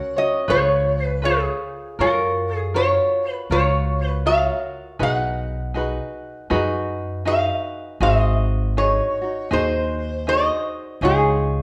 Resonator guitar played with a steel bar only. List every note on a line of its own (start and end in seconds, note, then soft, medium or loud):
0.00 0.21 F#5 medium
0.18 0.49 D#5 medium
0.50 1.06 C#5 medium
1.06 1.26 B4 medium
1.25 2.02 G#4 medium
2.01 2.57 A#4 medium
2.57 2.77 G#4 medium
2.76 3.32 C#5 medium
3.32 3.51 B4 medium
3.52 4.08 C#5 medium
4.08 4.28 B4 medium
4.27 5.03 F5 medium
5.03 6.48 F#5 medium
7.27 8.02 F5 medium
8.03 8.78 D#5 medium
8.78 9.53 C#5 medium
9.53 10.28 C5 medium
10.29 11.05 D#5 medium
11.05 11.62 G#4 medium